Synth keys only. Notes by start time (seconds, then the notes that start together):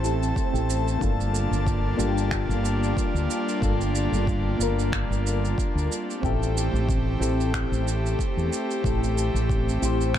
Already playing: C4 E4 G4 A4 C5
0.03 C4 E4 G4 A4
0.52 C4 E4 G4 A4
0.99 A#3 D4 F4
1.03 A4
1.97 A#3 D4 F4 G4
3.60 A#3 D4 F4 A4
4.58 A#3 D4 F4
4.62 A#4
6.21 C4 E4 G4
6.26 A4
7.20 C4 E4 G4 A4
8.82 C4 E4 G4
8.86 A4
9.80 C4 E4 G4
9.85 C5